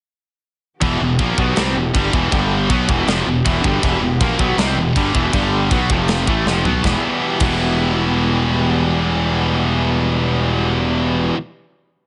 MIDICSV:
0, 0, Header, 1, 6, 480
1, 0, Start_track
1, 0, Key_signature, 1, "minor"
1, 0, Tempo, 376412
1, 1028, Time_signature, 4, 2, 24, 8
1, 15388, End_track
2, 0, Start_track
2, 0, Title_t, "String section"
2, 0, Program_c, 0, 48
2, 1012, Note_on_c, 0, 52, 72
2, 1015, Note_on_c, 0, 59, 70
2, 1024, Note_on_c, 0, 67, 82
2, 1028, Note_on_c, 0, 66, 61
2, 2922, Note_off_c, 0, 52, 0
2, 2924, Note_off_c, 0, 59, 0
2, 2928, Note_off_c, 0, 67, 0
2, 2930, Note_off_c, 0, 66, 0
2, 2961, Note_on_c, 0, 79, 71
2, 2968, Note_on_c, 0, 69, 65
2, 2974, Note_on_c, 0, 55, 67
2, 2978, Note_on_c, 0, 62, 60
2, 3431, Note_off_c, 0, 79, 0
2, 3433, Note_on_c, 0, 66, 76
2, 3434, Note_off_c, 0, 69, 0
2, 3435, Note_on_c, 0, 59, 74
2, 3438, Note_off_c, 0, 55, 0
2, 3439, Note_on_c, 0, 52, 74
2, 3440, Note_off_c, 0, 62, 0
2, 3447, Note_on_c, 0, 67, 82
2, 6766, Note_off_c, 0, 66, 0
2, 6767, Note_off_c, 0, 59, 0
2, 6769, Note_off_c, 0, 52, 0
2, 6773, Note_off_c, 0, 67, 0
2, 6804, Note_on_c, 0, 79, 82
2, 6808, Note_on_c, 0, 55, 69
2, 6810, Note_on_c, 0, 69, 60
2, 6815, Note_on_c, 0, 62, 60
2, 7277, Note_off_c, 0, 79, 0
2, 7279, Note_off_c, 0, 55, 0
2, 7280, Note_off_c, 0, 69, 0
2, 7283, Note_off_c, 0, 62, 0
2, 7284, Note_on_c, 0, 67, 74
2, 7287, Note_on_c, 0, 66, 60
2, 7292, Note_on_c, 0, 59, 64
2, 7297, Note_on_c, 0, 52, 67
2, 7512, Note_on_c, 0, 77, 75
2, 7517, Note_on_c, 0, 53, 66
2, 7521, Note_off_c, 0, 66, 0
2, 7521, Note_on_c, 0, 60, 64
2, 7523, Note_off_c, 0, 59, 0
2, 7526, Note_off_c, 0, 52, 0
2, 7956, Note_off_c, 0, 67, 0
2, 7960, Note_on_c, 0, 66, 63
2, 7962, Note_on_c, 0, 52, 70
2, 7967, Note_on_c, 0, 59, 66
2, 7972, Note_on_c, 0, 67, 78
2, 7991, Note_off_c, 0, 77, 0
2, 7994, Note_off_c, 0, 53, 0
2, 7996, Note_off_c, 0, 60, 0
2, 8681, Note_off_c, 0, 66, 0
2, 8690, Note_off_c, 0, 67, 0
2, 8694, Note_off_c, 0, 52, 0
2, 8696, Note_on_c, 0, 66, 67
2, 8697, Note_off_c, 0, 59, 0
2, 8706, Note_on_c, 0, 67, 87
2, 8711, Note_on_c, 0, 52, 81
2, 8712, Note_on_c, 0, 59, 62
2, 13512, Note_off_c, 0, 66, 0
2, 13517, Note_off_c, 0, 67, 0
2, 13519, Note_off_c, 0, 52, 0
2, 13520, Note_off_c, 0, 59, 0
2, 15388, End_track
3, 0, Start_track
3, 0, Title_t, "Distorted electric guitar"
3, 0, Program_c, 1, 30
3, 1032, Note_on_c, 1, 40, 95
3, 1043, Note_on_c, 1, 47, 93
3, 1049, Note_on_c, 1, 52, 88
3, 1258, Note_off_c, 1, 40, 0
3, 1264, Note_off_c, 1, 47, 0
3, 1271, Note_off_c, 1, 52, 0
3, 1273, Note_on_c, 1, 40, 57
3, 1279, Note_on_c, 1, 47, 79
3, 1463, Note_off_c, 1, 40, 0
3, 1466, Note_off_c, 1, 47, 0
3, 1516, Note_on_c, 1, 46, 91
3, 1521, Note_on_c, 1, 53, 87
3, 1529, Note_on_c, 1, 58, 113
3, 1745, Note_off_c, 1, 46, 0
3, 1748, Note_off_c, 1, 53, 0
3, 1751, Note_off_c, 1, 58, 0
3, 1753, Note_on_c, 1, 47, 93
3, 1753, Note_on_c, 1, 54, 87
3, 1766, Note_on_c, 1, 59, 87
3, 1983, Note_off_c, 1, 47, 0
3, 1983, Note_off_c, 1, 54, 0
3, 1988, Note_on_c, 1, 48, 88
3, 1990, Note_off_c, 1, 59, 0
3, 1999, Note_on_c, 1, 60, 99
3, 2001, Note_on_c, 1, 55, 96
3, 2221, Note_off_c, 1, 48, 0
3, 2226, Note_off_c, 1, 60, 0
3, 2227, Note_off_c, 1, 55, 0
3, 2240, Note_on_c, 1, 40, 67
3, 2242, Note_on_c, 1, 47, 76
3, 2426, Note_off_c, 1, 40, 0
3, 2427, Note_off_c, 1, 47, 0
3, 2476, Note_on_c, 1, 43, 87
3, 2491, Note_on_c, 1, 50, 95
3, 2491, Note_on_c, 1, 55, 101
3, 2705, Note_off_c, 1, 43, 0
3, 2713, Note_off_c, 1, 50, 0
3, 2713, Note_off_c, 1, 55, 0
3, 2715, Note_on_c, 1, 40, 88
3, 2726, Note_on_c, 1, 47, 95
3, 2733, Note_on_c, 1, 52, 102
3, 2945, Note_off_c, 1, 40, 0
3, 2951, Note_off_c, 1, 47, 0
3, 2954, Note_off_c, 1, 52, 0
3, 2958, Note_on_c, 1, 43, 91
3, 2960, Note_on_c, 1, 50, 94
3, 2965, Note_on_c, 1, 55, 113
3, 3427, Note_off_c, 1, 43, 0
3, 3428, Note_off_c, 1, 50, 0
3, 3431, Note_off_c, 1, 55, 0
3, 3437, Note_on_c, 1, 47, 96
3, 3448, Note_on_c, 1, 54, 94
3, 3456, Note_on_c, 1, 59, 111
3, 3667, Note_off_c, 1, 47, 0
3, 3672, Note_off_c, 1, 54, 0
3, 3676, Note_off_c, 1, 59, 0
3, 3676, Note_on_c, 1, 40, 94
3, 3689, Note_on_c, 1, 47, 94
3, 3695, Note_on_c, 1, 52, 107
3, 3906, Note_off_c, 1, 40, 0
3, 3913, Note_off_c, 1, 47, 0
3, 3916, Note_off_c, 1, 52, 0
3, 3927, Note_on_c, 1, 41, 90
3, 3937, Note_on_c, 1, 48, 97
3, 3951, Note_on_c, 1, 53, 103
3, 4152, Note_off_c, 1, 41, 0
3, 4157, Note_off_c, 1, 48, 0
3, 4164, Note_off_c, 1, 53, 0
3, 4176, Note_on_c, 1, 40, 70
3, 4180, Note_on_c, 1, 47, 74
3, 4356, Note_off_c, 1, 40, 0
3, 4358, Note_off_c, 1, 47, 0
3, 4397, Note_on_c, 1, 40, 96
3, 4411, Note_on_c, 1, 47, 101
3, 4415, Note_on_c, 1, 52, 102
3, 4628, Note_off_c, 1, 40, 0
3, 4635, Note_off_c, 1, 47, 0
3, 4637, Note_off_c, 1, 52, 0
3, 4647, Note_on_c, 1, 43, 99
3, 4661, Note_on_c, 1, 50, 106
3, 4664, Note_on_c, 1, 55, 109
3, 4873, Note_off_c, 1, 43, 0
3, 4880, Note_off_c, 1, 50, 0
3, 4882, Note_off_c, 1, 55, 0
3, 4894, Note_on_c, 1, 40, 98
3, 4898, Note_on_c, 1, 47, 89
3, 4908, Note_on_c, 1, 52, 100
3, 5109, Note_off_c, 1, 40, 0
3, 5110, Note_off_c, 1, 47, 0
3, 5124, Note_off_c, 1, 52, 0
3, 5124, Note_on_c, 1, 40, 59
3, 5126, Note_on_c, 1, 47, 72
3, 5312, Note_off_c, 1, 40, 0
3, 5312, Note_off_c, 1, 47, 0
3, 5366, Note_on_c, 1, 46, 91
3, 5376, Note_on_c, 1, 53, 91
3, 5378, Note_on_c, 1, 58, 104
3, 5594, Note_off_c, 1, 46, 0
3, 5599, Note_off_c, 1, 53, 0
3, 5600, Note_off_c, 1, 58, 0
3, 5606, Note_on_c, 1, 47, 97
3, 5618, Note_on_c, 1, 54, 98
3, 5618, Note_on_c, 1, 59, 102
3, 5834, Note_off_c, 1, 47, 0
3, 5838, Note_off_c, 1, 54, 0
3, 5840, Note_off_c, 1, 59, 0
3, 5841, Note_on_c, 1, 48, 97
3, 5844, Note_on_c, 1, 55, 104
3, 5854, Note_on_c, 1, 60, 106
3, 6072, Note_off_c, 1, 48, 0
3, 6073, Note_off_c, 1, 55, 0
3, 6078, Note_off_c, 1, 60, 0
3, 6096, Note_on_c, 1, 40, 66
3, 6101, Note_on_c, 1, 47, 73
3, 6279, Note_off_c, 1, 40, 0
3, 6281, Note_off_c, 1, 47, 0
3, 6334, Note_on_c, 1, 43, 89
3, 6338, Note_on_c, 1, 50, 102
3, 6346, Note_on_c, 1, 55, 104
3, 6547, Note_off_c, 1, 43, 0
3, 6552, Note_on_c, 1, 40, 96
3, 6555, Note_off_c, 1, 50, 0
3, 6558, Note_off_c, 1, 55, 0
3, 6560, Note_on_c, 1, 47, 103
3, 6563, Note_on_c, 1, 52, 107
3, 6788, Note_off_c, 1, 40, 0
3, 6792, Note_off_c, 1, 47, 0
3, 6794, Note_off_c, 1, 52, 0
3, 6799, Note_on_c, 1, 43, 87
3, 6809, Note_on_c, 1, 50, 93
3, 6818, Note_on_c, 1, 55, 110
3, 7272, Note_off_c, 1, 43, 0
3, 7274, Note_off_c, 1, 50, 0
3, 7278, Note_off_c, 1, 55, 0
3, 7279, Note_on_c, 1, 47, 99
3, 7284, Note_on_c, 1, 54, 96
3, 7292, Note_on_c, 1, 59, 93
3, 7512, Note_off_c, 1, 47, 0
3, 7514, Note_off_c, 1, 54, 0
3, 7518, Note_off_c, 1, 59, 0
3, 7518, Note_on_c, 1, 41, 94
3, 7523, Note_on_c, 1, 48, 94
3, 7531, Note_on_c, 1, 53, 101
3, 7992, Note_off_c, 1, 41, 0
3, 7992, Note_off_c, 1, 48, 0
3, 7997, Note_on_c, 1, 45, 85
3, 7999, Note_off_c, 1, 53, 0
3, 8006, Note_on_c, 1, 52, 97
3, 8010, Note_on_c, 1, 57, 98
3, 8232, Note_off_c, 1, 45, 0
3, 8236, Note_off_c, 1, 52, 0
3, 8238, Note_off_c, 1, 57, 0
3, 8239, Note_on_c, 1, 41, 98
3, 8248, Note_on_c, 1, 48, 92
3, 8256, Note_on_c, 1, 53, 106
3, 8473, Note_off_c, 1, 41, 0
3, 8474, Note_off_c, 1, 48, 0
3, 8479, Note_on_c, 1, 47, 93
3, 8481, Note_off_c, 1, 53, 0
3, 8487, Note_on_c, 1, 54, 92
3, 8492, Note_on_c, 1, 59, 98
3, 8693, Note_off_c, 1, 47, 0
3, 8698, Note_on_c, 1, 52, 87
3, 8715, Note_off_c, 1, 54, 0
3, 8719, Note_off_c, 1, 59, 0
3, 8721, Note_on_c, 1, 55, 98
3, 8735, Note_on_c, 1, 59, 102
3, 8756, Note_on_c, 1, 64, 106
3, 9411, Note_off_c, 1, 52, 0
3, 9417, Note_on_c, 1, 52, 90
3, 9440, Note_off_c, 1, 55, 0
3, 9446, Note_on_c, 1, 55, 109
3, 9451, Note_off_c, 1, 59, 0
3, 9456, Note_on_c, 1, 59, 108
3, 9468, Note_off_c, 1, 64, 0
3, 9473, Note_on_c, 1, 64, 109
3, 14456, Note_off_c, 1, 52, 0
3, 14470, Note_off_c, 1, 55, 0
3, 14476, Note_off_c, 1, 59, 0
3, 14484, Note_off_c, 1, 64, 0
3, 15388, End_track
4, 0, Start_track
4, 0, Title_t, "Distorted electric guitar"
4, 0, Program_c, 2, 30
4, 8707, Note_on_c, 2, 40, 79
4, 8738, Note_on_c, 2, 47, 87
4, 8763, Note_on_c, 2, 52, 87
4, 9424, Note_off_c, 2, 40, 0
4, 9429, Note_on_c, 2, 40, 115
4, 9460, Note_off_c, 2, 47, 0
4, 9465, Note_on_c, 2, 47, 108
4, 9481, Note_off_c, 2, 52, 0
4, 9487, Note_on_c, 2, 52, 115
4, 14462, Note_off_c, 2, 40, 0
4, 14480, Note_off_c, 2, 47, 0
4, 14491, Note_off_c, 2, 52, 0
4, 15388, End_track
5, 0, Start_track
5, 0, Title_t, "Fingered electric bass"
5, 0, Program_c, 3, 33
5, 1045, Note_on_c, 3, 28, 93
5, 1261, Note_off_c, 3, 28, 0
5, 1290, Note_on_c, 3, 28, 89
5, 1503, Note_off_c, 3, 28, 0
5, 1520, Note_on_c, 3, 34, 85
5, 1738, Note_off_c, 3, 34, 0
5, 1758, Note_on_c, 3, 35, 106
5, 1977, Note_off_c, 3, 35, 0
5, 2009, Note_on_c, 3, 36, 93
5, 2223, Note_off_c, 3, 36, 0
5, 2249, Note_on_c, 3, 28, 72
5, 2463, Note_off_c, 3, 28, 0
5, 2490, Note_on_c, 3, 31, 84
5, 2704, Note_off_c, 3, 31, 0
5, 2718, Note_on_c, 3, 28, 94
5, 2938, Note_off_c, 3, 28, 0
5, 2962, Note_on_c, 3, 31, 89
5, 3403, Note_off_c, 3, 31, 0
5, 3439, Note_on_c, 3, 35, 87
5, 3659, Note_off_c, 3, 35, 0
5, 3683, Note_on_c, 3, 28, 106
5, 3901, Note_off_c, 3, 28, 0
5, 3918, Note_on_c, 3, 29, 101
5, 4138, Note_off_c, 3, 29, 0
5, 4167, Note_on_c, 3, 28, 67
5, 4383, Note_off_c, 3, 28, 0
5, 4412, Note_on_c, 3, 28, 92
5, 4627, Note_off_c, 3, 28, 0
5, 4645, Note_on_c, 3, 31, 101
5, 4863, Note_off_c, 3, 31, 0
5, 4888, Note_on_c, 3, 28, 93
5, 5101, Note_off_c, 3, 28, 0
5, 5108, Note_on_c, 3, 28, 86
5, 5335, Note_off_c, 3, 28, 0
5, 5362, Note_on_c, 3, 34, 89
5, 5582, Note_off_c, 3, 34, 0
5, 5607, Note_on_c, 3, 35, 109
5, 5818, Note_off_c, 3, 35, 0
5, 5826, Note_on_c, 3, 36, 97
5, 6054, Note_off_c, 3, 36, 0
5, 6068, Note_on_c, 3, 28, 74
5, 6296, Note_off_c, 3, 28, 0
5, 6322, Note_on_c, 3, 31, 86
5, 6543, Note_off_c, 3, 31, 0
5, 6565, Note_on_c, 3, 28, 99
5, 6785, Note_off_c, 3, 28, 0
5, 6810, Note_on_c, 3, 31, 85
5, 7252, Note_off_c, 3, 31, 0
5, 7281, Note_on_c, 3, 35, 99
5, 7503, Note_off_c, 3, 35, 0
5, 7523, Note_on_c, 3, 29, 112
5, 7968, Note_off_c, 3, 29, 0
5, 8004, Note_on_c, 3, 33, 84
5, 8226, Note_off_c, 3, 33, 0
5, 8242, Note_on_c, 3, 29, 83
5, 8465, Note_off_c, 3, 29, 0
5, 8477, Note_on_c, 3, 35, 92
5, 8702, Note_off_c, 3, 35, 0
5, 8727, Note_on_c, 3, 28, 90
5, 8858, Note_off_c, 3, 28, 0
5, 9444, Note_on_c, 3, 28, 105
5, 14418, Note_off_c, 3, 28, 0
5, 15388, End_track
6, 0, Start_track
6, 0, Title_t, "Drums"
6, 1039, Note_on_c, 9, 36, 121
6, 1043, Note_on_c, 9, 52, 64
6, 1167, Note_off_c, 9, 36, 0
6, 1171, Note_off_c, 9, 52, 0
6, 1516, Note_on_c, 9, 52, 61
6, 1517, Note_on_c, 9, 36, 108
6, 1643, Note_off_c, 9, 52, 0
6, 1645, Note_off_c, 9, 36, 0
6, 1758, Note_on_c, 9, 36, 108
6, 1885, Note_off_c, 9, 36, 0
6, 1989, Note_on_c, 9, 52, 61
6, 2003, Note_on_c, 9, 38, 102
6, 2117, Note_off_c, 9, 52, 0
6, 2131, Note_off_c, 9, 38, 0
6, 2482, Note_on_c, 9, 36, 118
6, 2494, Note_on_c, 9, 52, 69
6, 2609, Note_off_c, 9, 36, 0
6, 2621, Note_off_c, 9, 52, 0
6, 2721, Note_on_c, 9, 36, 98
6, 2849, Note_off_c, 9, 36, 0
6, 2960, Note_on_c, 9, 52, 65
6, 2961, Note_on_c, 9, 36, 115
6, 3087, Note_off_c, 9, 52, 0
6, 3088, Note_off_c, 9, 36, 0
6, 3442, Note_on_c, 9, 36, 110
6, 3442, Note_on_c, 9, 52, 63
6, 3569, Note_off_c, 9, 36, 0
6, 3570, Note_off_c, 9, 52, 0
6, 3682, Note_on_c, 9, 36, 117
6, 3809, Note_off_c, 9, 36, 0
6, 3921, Note_on_c, 9, 52, 54
6, 3935, Note_on_c, 9, 38, 100
6, 4048, Note_off_c, 9, 52, 0
6, 4062, Note_off_c, 9, 38, 0
6, 4408, Note_on_c, 9, 36, 114
6, 4417, Note_on_c, 9, 52, 65
6, 4535, Note_off_c, 9, 36, 0
6, 4545, Note_off_c, 9, 52, 0
6, 4645, Note_on_c, 9, 36, 108
6, 4773, Note_off_c, 9, 36, 0
6, 4886, Note_on_c, 9, 36, 115
6, 4893, Note_on_c, 9, 52, 66
6, 5014, Note_off_c, 9, 36, 0
6, 5020, Note_off_c, 9, 52, 0
6, 5365, Note_on_c, 9, 36, 118
6, 5371, Note_on_c, 9, 52, 60
6, 5492, Note_off_c, 9, 36, 0
6, 5498, Note_off_c, 9, 52, 0
6, 5602, Note_on_c, 9, 36, 111
6, 5729, Note_off_c, 9, 36, 0
6, 5840, Note_on_c, 9, 52, 63
6, 5854, Note_on_c, 9, 38, 102
6, 5968, Note_off_c, 9, 52, 0
6, 5982, Note_off_c, 9, 38, 0
6, 6323, Note_on_c, 9, 36, 105
6, 6331, Note_on_c, 9, 52, 73
6, 6451, Note_off_c, 9, 36, 0
6, 6458, Note_off_c, 9, 52, 0
6, 6563, Note_on_c, 9, 36, 105
6, 6691, Note_off_c, 9, 36, 0
6, 6802, Note_on_c, 9, 36, 118
6, 6804, Note_on_c, 9, 52, 69
6, 6929, Note_off_c, 9, 36, 0
6, 6931, Note_off_c, 9, 52, 0
6, 7282, Note_on_c, 9, 36, 114
6, 7287, Note_on_c, 9, 52, 62
6, 7410, Note_off_c, 9, 36, 0
6, 7415, Note_off_c, 9, 52, 0
6, 7521, Note_on_c, 9, 36, 114
6, 7648, Note_off_c, 9, 36, 0
6, 7752, Note_on_c, 9, 52, 60
6, 7766, Note_on_c, 9, 38, 101
6, 7880, Note_off_c, 9, 52, 0
6, 7894, Note_off_c, 9, 38, 0
6, 8001, Note_on_c, 9, 36, 104
6, 8129, Note_off_c, 9, 36, 0
6, 8251, Note_on_c, 9, 38, 63
6, 8378, Note_off_c, 9, 38, 0
6, 8484, Note_on_c, 9, 43, 86
6, 8611, Note_off_c, 9, 43, 0
6, 8724, Note_on_c, 9, 36, 107
6, 8737, Note_on_c, 9, 38, 96
6, 8851, Note_off_c, 9, 36, 0
6, 8865, Note_off_c, 9, 38, 0
6, 9438, Note_on_c, 9, 49, 94
6, 9445, Note_on_c, 9, 36, 114
6, 9565, Note_off_c, 9, 49, 0
6, 9572, Note_off_c, 9, 36, 0
6, 15388, End_track
0, 0, End_of_file